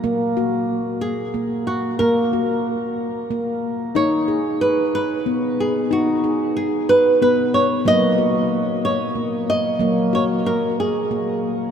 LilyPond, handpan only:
\new Staff \with { instrumentName = "Handpan" } { \time 6/8 \key fis \major \tempo 4. = 61 << { ais8 fis'4 r8 ais4 | ais8 fis'4 r8 ais4 | dis'8 gis'4 r8 b4 | dis'8 gis'4 r8 b4 |
ais8 fis'4 r8 ais4 | ais8 fis'4 r8 ais4 | } \\ { r2. | r2. | r2. | r2. |
fis2. | fis2. | } >> }